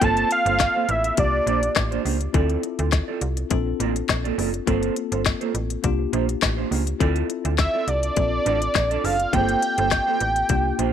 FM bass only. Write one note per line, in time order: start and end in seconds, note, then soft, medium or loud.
0.02 0.24 G1 loud
0.46 0.68 G1 loud
0.89 1.11 A1 medium
1.18 1.41 C2 medium
1.47 1.69 A#1 medium
1.76 1.99 A1 loud
2.05 2.28 C#2 medium
2.34 2.57 D2 loud
2.79 3.02 D2 medium
3.21 3.44 C2 medium
3.51 3.74 A#1 loud
3.80 4.03 A1 medium
4.09 4.32 A#1 medium
4.38 4.61 F#1 medium
4.67 4.90 G1 loud
5.12 5.35 G1 medium
5.54 5.77 A1 medium
5.84 6.07 C2 medium
6.13 6.36 A#1 loud
6.42 6.65 A1 loud
6.71 6.94 C#2 medium
7.01 7.23 D2 loud
7.45 7.68 D2 medium
7.88 8.10 C2 medium
8.17 8.40 A#1 medium
8.46 8.69 A1 medium
8.75 8.98 A#1 loud
9.04 9.27 F#1 medium
9.33 9.56 G1 loud
9.78 10.01 G1 loud
10.21 10.44 A1 medium
10.50 10.72 C2 medium
10.79 10.93 A#1 medium